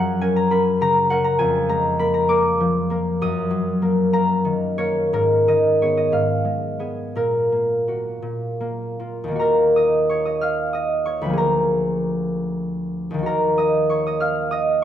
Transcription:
Already playing: F#2 F#3 C#4 C#5 F#5 A#5
0.21 C#4 A#4 G#5
0.36 A#5
0.50 C#4 A#4 B5
0.81 C#3 A#5
1.10 C#4 A#4 F#5
1.24 A#5
1.39 F2 G#5
1.69 G#3 A#5
1.99 A#3 A#4 B5
2.14 A#5
2.28 A#3 A#4 D6
2.60 F3
2.90 A#3 A#4
3.21 F#2 D#6
3.50 F#3
3.82 A#3 A#4
4.13 A#3 A#4 A#5
4.45 D#3
4.78 A#3 A#4 C#5
5.13 G#2 A#4
5.48 D#3 D#5
5.82 B3 G#4 C#5
5.97 D#5
6.12 G#2 F5
6.45 G#3
6.79 B3 G#4
7.15 A#2 A#4
7.52 A#3
7.88 A#3 F#4
8.22 A#2
8.60 A#3
8.99 A#3 F4
9.24 D#2
9.28 D#3 A#3
9.35 F#4
9.39 A#4 A#5
9.76 D#5 D#6
10.09 C#5 C#6
10.25 D#5 D#6
10.41 F5 F6
10.73 D#5 D#6
11.06 C#5 C#6
11.21 D2 B4 B5
11.26 F3 A#3
11.33 G#4
11.38 A#4 A#5
13.11 D#2 D#3
13.19 A#3
13.23 F#4 A#5
13.27 A#4
13.58 D#5 D#6
13.90 C#5 C#6
14.06 D#5 D#6
14.20 F5 F6
14.51 D#5 D#6

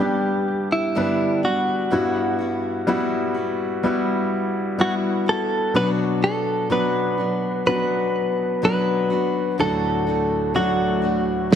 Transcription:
Already playing: G2 D3 G3 G4 A4
0.00 G3 B3 D4 G4
0.72 E4
0.95 G2 D3 G3 B3 D4 G4 B4
1.44 G3 B3 D4 F#4
1.91 G2 G3 B3 E4 F#4
2.39 B3 E4 F#4
2.87 G3 B3 E4 F#4
3.34 B3 E4 F#4
3.83 G3 B3 E4 F#4
4.78 G3 B3 E4 F#4
5.26 B3 E4 F#4 A4
5.74 B2 F#3 B3 D4 F#4 B4
6.22 B3 D4 F#4 A4
6.70 B2 F#3 B3 D4 F#4 B4
7.18 B3 D4 F#4
7.66 F#3 B3 D4 F#4 B4
8.62 B2 F#3 B3 D4 F#4 B4
9.10 B3 D4 F#4
9.58 D2 A2 D3 F#3 A3 D4 F#4 A4
10.07 A3 D4 F#4
10.54 D3 F#3 A3 D4 F#4
11.02 A3 D4 F#4
11.51 D3 F#3 A3

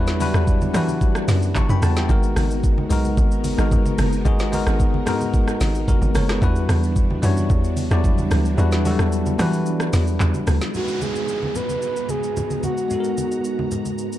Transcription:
Already playing: E2 E3 G3 B3 D4 E4 F#4 B4 C#5 D5
0.07 snare, shaker
0.19 F#3 D4 E4 F#4 B4, open hi-hat, high conga, shaker
0.26 G3
0.34 E2, cross-stick, shaker
0.47 kick, shaker
0.61 high conga, shaker
0.73 E3 G3 D4 E4 F#4 B4, cross-stick, open hi-hat, low conga, shaker
0.88 high conga, shaker
1.01 kick, shaker
1.15 cross-stick, shaker
1.28 F#2, snare, open hi-hat, high conga, shaker
1.42 shaker
1.55 A5 C#6, kick, clap, high conga, low conga, shaker
1.69 F#2 G5 B5, high conga, shaker
1.82 E2 F#5 A5, cross-stick, open hi-hat, high conga, low conga, shaker
1.96 E5 G5, snare, shaker
2.08 G#1 G#3 B3 D#4 F#4 A#4, kick, low conga, shaker
2.23 shaker
2.36 G#1, cross-stick, open hi-hat, high conga, shaker
2.51 shaker
2.64 kick, shaker
2.78 high conga
2.90 B1 G#3 B3 D#4 F#4 A#4, open hi-hat, low conga, shaker
3.04 high conga, shaker
3.17 G#1, kick, shaker
3.32 shaker
3.44 open hi-hat, high conga, shaker
3.58 G#1 G#3 B3 D#4 F#4 A#4, cross-stick, shaker
3.71 kick, high conga, low conga, shaker
3.85 high conga, shaker
3.98 F#1, cross-stick, open hi-hat, high conga, low conga, shaker
4.13 shaker
4.25 G#1 G#3 B3 D#4 F#4 G#4, kick, low conga, shaker
4.39 snare, shaker
4.52 G#3 B3 D#4 F#4 A#4, open hi-hat, high conga, shaker
4.67 G#1, cross-stick, shaker
4.80 kick, shaker
4.94 high conga
5.06 G#2 G#3 B3 D#4 F#4 A#4, cross-stick, open hi-hat, low conga, shaker
5.21 high conga, shaker
5.34 kick, shaker
5.48 cross-stick, shaker
5.60 G#1, snare, open hi-hat, high conga, shaker
5.75 shaker
5.88 F#4 A#4, kick, high conga, low conga, shaker
6.02 G#1, high conga, shaker
6.15 F#1 A#4 C#5, cross-stick, open hi-hat, high conga, low conga, shaker
6.29 G#4 B4, cross-stick, snare, shaker
6.41 E2 E3 G3 B3 D4 E4 F#4 B4, kick, low conga, shaker
6.56 shaker
6.69 E2, cross-stick, open hi-hat, high conga, shaker
6.83 shaker
6.96 kick, shaker
7.10 high conga
7.22 F#2 G3 D4 E4 F#4 C#5, open hi-hat, low conga, shaker
7.37 high conga, shaker
7.50 E2, kick, shaker
7.64 shaker
7.77 open hi-hat, high conga, shaker
7.90 E2 F#3 D4 E4 F#4 D5, cross-stick, shaker
7.97 G3
8.04 kick, high conga, low conga, shaker
8.18 high conga, shaker
8.31 D2, cross-stick, open hi-hat, high conga, low conga, shaker
8.45 shaker
8.57 E2 G3 D4 E4 F#4 B4, low conga, shaker
8.72 snare, shaker
8.84 F#3 D4 E4 F#4 A4, open hi-hat, high conga, shaker
8.91 G3
8.99 E2, cross-stick, shaker
9.12 shaker
9.26 high conga, shaker
9.38 E3 G3 D4 E4 F#4 B4, cross-stick, open hi-hat, low conga, shaker
9.53 shaker
9.66 shaker
9.80 cross-stick, shaker
9.93 E2, snare, open hi-hat, high conga, shaker
10.07 shaker
10.20 E2, clap, high conga, low conga, shaker
10.34 high conga, shaker
10.47 D2, cross-stick, open hi-hat, high conga, low conga, shaker
10.61 snare, shaker
10.72 G#2 G#3 B3 D#4 F#4 A#5, downlifter, low conga, shaker
10.76 F#4 A4
10.84 B4, shaker
11.01 G#4, high conga, shaker
11.16 shaker
11.28 shaker
11.43 high conga
11.55 B4, low conga, shaker
11.69 high conga, shaker
11.82 shaker
11.96 shaker
12.09 G#4, high conga, shaker
12.23 shaker
12.37 high conga, low conga, shaker
12.50 high conga, shaker
12.63 F#4, high conga, low conga, shaker
12.77 shaker
12.88 G#3 B3 D#4, low conga, shaker
12.92 F#4 A4
13.00 A#4, shaker
13.17 high conga, shaker
13.32 shaker
13.45 shaker
13.59 high conga
13.71 low conga, shaker
13.85 high conga, shaker
13.98 shaker
14.13 shaker

